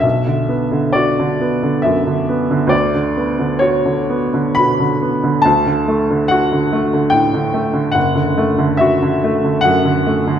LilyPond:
<<
  \new Staff \with { instrumentName = "Upright piano" } { \time 3/4 \key b \minor \tempo 4 = 70 e''4 d''4 e''4 | d''4 cis''4 b''4 | a''4 fis''4 g''4 | fis''4 e''4 fis''4 | }
  \new Staff \with { instrumentName = "Upright piano" } { \clef bass \time 3/4 \key b \minor b,,16 d16 b16 d16 fis'16 d16 b16 d16 fis,16 d16 b16 d16 | d,16 d16 b16 d16 fis'16 d16 b16 d16 b,16 d16 b16 d16 | d,16 d16 a16 d16 fis'16 d16 a16 d16 a,16 d16 a16 d16 | fis,,16 d16 a16 d16 fis'16 d16 a16 d16 fis,16 d16 a16 d16 | }
>>